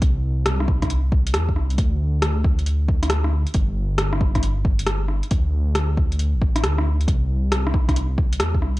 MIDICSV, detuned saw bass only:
0, 0, Header, 1, 2, 480
1, 0, Start_track
1, 0, Tempo, 441176
1, 21, Time_signature, 4, 2, 24, 8
1, 9571, End_track
2, 0, Start_track
2, 0, Title_t, "Detuned saw bass"
2, 0, Program_c, 0, 39
2, 21, Note_on_c, 0, 36, 96
2, 1211, Note_off_c, 0, 36, 0
2, 1220, Note_on_c, 0, 36, 79
2, 1462, Note_on_c, 0, 40, 104
2, 1478, Note_off_c, 0, 36, 0
2, 1705, Note_on_c, 0, 36, 102
2, 1722, Note_off_c, 0, 40, 0
2, 1930, Note_off_c, 0, 36, 0
2, 1937, Note_on_c, 0, 38, 99
2, 3758, Note_off_c, 0, 38, 0
2, 3855, Note_on_c, 0, 31, 100
2, 5676, Note_off_c, 0, 31, 0
2, 5779, Note_on_c, 0, 38, 101
2, 6902, Note_on_c, 0, 33, 97
2, 6918, Note_off_c, 0, 38, 0
2, 7219, Note_on_c, 0, 38, 101
2, 7235, Note_off_c, 0, 33, 0
2, 7689, Note_off_c, 0, 38, 0
2, 7699, Note_on_c, 0, 36, 101
2, 8890, Note_off_c, 0, 36, 0
2, 8898, Note_on_c, 0, 36, 79
2, 9136, Note_on_c, 0, 40, 106
2, 9152, Note_off_c, 0, 36, 0
2, 9380, Note_on_c, 0, 36, 101
2, 9396, Note_off_c, 0, 40, 0
2, 9571, Note_off_c, 0, 36, 0
2, 9571, End_track
0, 0, End_of_file